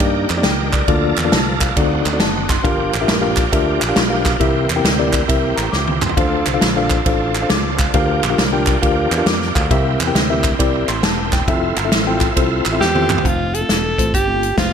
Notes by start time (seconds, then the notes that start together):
Already playing: D#3 D4 G4 A#4
0.00 G2 A#3 D4 D#4 G4 D5, kick, ride
0.29 F2, clap, ride
0.37 A#3 D4 D#4 G4 D5
0.43 C#2 G5, snare, ride
0.73 D5, kick, clap, ride
0.88 D2 D3 F3 A#3 D4 F4 A4 D5, kick, ride
1.16 E2, clap, ride
1.24 A#3 D4 F4 A4 D5
1.32 C2 A5, snare, ride
1.61 F5, kick, clap, ride
1.76 D2 D3 C4 D#4 F#4 A4 D5, kick, ride
2.05 D2, clap, ride
2.13 C4 D#4 F#4 A4 D5
2.20 F#1 A5, snare, ride
2.49 C6, kick, snare, clap, ride
2.64 G1 G2 F3 A#3 D4 F4 G4 A#4 F5, kick, ride
2.93 A1, clap, ride
3.01 D4 F4 G4 A#4 E5
3.08 A#1, snare, ride
3.21 D4 F4 G4 A#4 F5
3.37 kick, clap, ride
3.52 D2 D4 F4 G4 A#4 E5, kick, ride
3.82 A#1, clap, ride
3.88 D4 F4 G4 A#4 F5
3.96 B1, snare, ride
4.10 D4 F4 G4 A#4 F5
4.25 kick, snare, clap, ride
4.40 C2 C3 E3 C4 E4 G4 A#4 E5, kick, ride
4.69 E2, clap, ride
4.76 C4 E4 G4 A#4 G5
4.84 D2, snare, ride
4.99 C4 E4 G4 A#4 D5
5.13 kick, clap, ride
5.28 C2 C4 E4 G4 A#4 E5, kick, ride
5.56 A1 A#5, clap, ride
5.72 C#2 D6, snare
5.88 high tom
6.02 C6, clap, mid tom
6.09 floor tom
6.17 D2 D3 F3 D4 F4 A4 C5 F5, kick, ride
6.46 C2, clap, ride
6.54 D4 F4 A4 C5 F5
6.61 A#1, snare, ride
6.76 D4 F4 A4 C5 F5
6.90 kick, clap, ride
7.06 A1 D4 F4 A4 C5 F5, kick, ride
7.35 clap, ride
7.42 D4 F4 A4 C5 F5
7.50 C#2 D6, snare, ride
7.79 F5, kick, clap, ride
7.94 D2 D3 A#3 D4 F4 G4 A#4 F5, kick, ride
8.23 A#1, clap, ride
8.30 D4 F4 G4 A#4 F5
8.38 C2, snare, ride
8.52 D4 F4 G4 A#4 G5
8.66 kick, clap, ride
8.82 D2 D4 F4 G4 A#4 F5, kick, ride
9.11 E2, clap, ride
9.18 D4 F4 G4 A#4 F5
9.26 F2 D6, snare, ride
9.42 snare
9.55 D2 F5, kick, clap, ride
9.71 C2 C3 C4 E4 G4 A#4 E5, kick, ride
10.00 E2, clap, ride
10.06 C4 E4 G4 A#4 G5
10.15 D2, snare, ride
10.30 C4 E4 G4 A#4 E5
10.44 kick, clap, ride
10.58 C2 C4 E4 G4 A#4 D5, kick, ride
10.88 A1 C6, clap, ride
11.03 E1 A5, snare, ride
11.33 G5, kick, snare, clap, ride
11.47 F1 A3 C4 E4 F4 A4 E5, kick, ride
11.76 G1, clap, ride
11.85 C4 E4 F4 A4 E5
11.92 A1, snare, ride
12.07 C4 E4 F4 A4 G5
12.21 kick, clap, ride
12.36 C2 C4 E4 F4 A4 C5, kick, ride
12.65 A1, clap, ride
12.72 C4 E4 F4 A4 E5
12.81 E2 G4, snare
12.95 C4 E4 F4 A4 C5, high tom
13.10 clap, mid tom
13.18 floor tom
13.23 F1 A3 C4 F4 C5, kick, closed hi-hat
13.54 A4, closed hi-hat
13.61 A3 C4 F4 A4
13.69 E1, snare, closed hi-hat
13.98 A1 A3 C4 F4 C5, kick, closed hi-hat
14.14 G1 G4, kick, closed hi-hat
14.28 A3 C4 F4 G4
14.43 closed hi-hat
14.57 F1 A3 C4 F4 C5, kick, snare, closed hi-hat